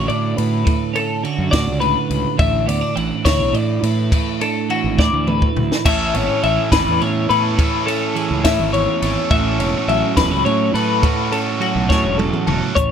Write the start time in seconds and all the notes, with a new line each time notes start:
Already playing: D3 C#4 F#4
0.07 A2 D5, ride
0.37 A2 B4, ride
0.65 A2, kick, ride
0.93 C#4 A4, ride
1.23 D3 F#4, ride
1.38 F#2
1.51 A2 F#4 D5, kick, snare, ride
1.67 C#2
1.79 A2 B4, ride
2.10 C#2, ride
2.37 A1 A2 E5, kick, ride
2.66 D2 B3 D5, ride
2.81 D4
2.95 A1 E3 F#5, ride
3.25 D2 E4 C#5, kick, snare, ride
3.39 B1
3.53 A2 D5, ride
3.83 A2 B4, ride
4.12 A2, kick, ride
4.41 D4 A4, ride
4.70 E3 F#4, ride
4.84 G#1
4.98 A2 E4 D5, kick, snare
5.14 D2
5.27 A2 B4, mid tom
5.42 kick
5.56 D2, floor tom
5.72 snare
5.85 A1 A2 A3 C#4 E4 A4 E5, kick, crash
6.14 G#1 B3 C#5, ride
6.28 C#4
6.42 A1 E3 E5, ride
6.72 G#1 B4, kick, snare, ride
6.87 E2
7.00 E2 A2 C#5, ride
7.29 A2 A3 C#4 E4 A4 B4, ride
7.58 A2 A3 C#4 E4 A4, kick, ride
7.86 C#4 A4, ride
8.15 E3 G#4, ride
8.31 C#2
8.44 A2 E5, kick, snare, ride
8.60 G#1
8.73 E2 C#5, ride
9.02 G#1 A3 C#4 E4 A4, ride
9.31 A1 A2 A3 C#4 F#4 A4 E5, kick, ride
9.59 E1 C#4 C#5, ride
9.88 A1 F#3 E5, ride
10.17 E1 E4 B4, kick, snare, ride
10.31 C#2 F#4
10.45 A2 C#5, ride
10.74 A2 A3 C#4 F#4 A4 B4, ride
11.02 A2 A3 C#4 F#4 A4, kick, ride
11.32 C#4 A4, ride
11.60 F#3 F#4, ride
11.76 B1
11.89 A2 F#4 C#5, kick, snare
12.05 E1
12.18 A2 A4, high tom
12.33 mid tom
12.47 E1 A3 C#4 F#4 A4, mid tom
12.75 A1 A2 C#5, kick, closed hi-hat